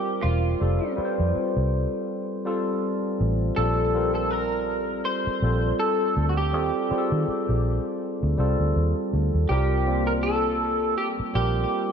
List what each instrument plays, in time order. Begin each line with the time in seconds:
Already playing: tine electric piano G3 C4 F4 A#4 C5, clean electric guitar G4
0.22 fingered electric bass E1, clean electric guitar F4
0.60 fingered electric bass F1, tine electric piano G3 C4 F4 A4
0.96 tine electric piano G3 C4 F4 B4, muted fingered electric bass stroke
1.05 tine electric piano C5
1.20 fingered electric bass F2
1.35 muted fingered electric bass stroke
1.57 fingered electric bass C2
2.45 tine electric piano G3 C4 F4 A4
3.21 fingered electric bass A1
3.56 fingered electric bass A#1, tine electric piano G3 C4 F4 A4, clean electric guitar A4
3.94 tine electric piano G3 C4 F4 A#4
4.15 clean electric guitar A4
4.31 clean electric guitar A#4
5.05 clean electric guitar C5
5.27 muted fingered electric bass stroke
5.42 fingered electric bass A#1, tine electric piano G3 C4 F4 A4
5.79 clean electric guitar A4
6.17 fingered electric bass D2
6.29 clean electric guitar F#4
6.37 clean electric guitar G4
6.53 fingered electric bass D#2, tine electric piano G3 C4 F4 A4
6.90 tine electric piano G3 C4 F4 G#4, muted fingered electric bass stroke
6.98 tine electric piano A4
7.12 fingered electric bass D#3
7.28 muted fingered electric bass stroke
7.49 fingered electric bass A#1
8.23 fingered electric bass D2
8.38 fingered electric bass C2, tine electric piano G3 C4 F4 A4
8.60 fingered electric bass D2
8.76 fingered electric bass D#2
9.13 fingered electric bass D2
9.34 fingered electric bass D#2
9.49 fingered electric bass C2, tine electric piano G3 C4 F4 A#4, clean electric guitar G4
9.86 tine electric piano G3 A#3 C4 F4
10.07 clean electric guitar A#4
10.23 clean electric guitar A4
10.98 clean electric guitar G4
11.20 muted fingered electric bass stroke
11.34 fingered electric bass A#1, tine electric piano G3 C4 F4 A#4, clean electric guitar G4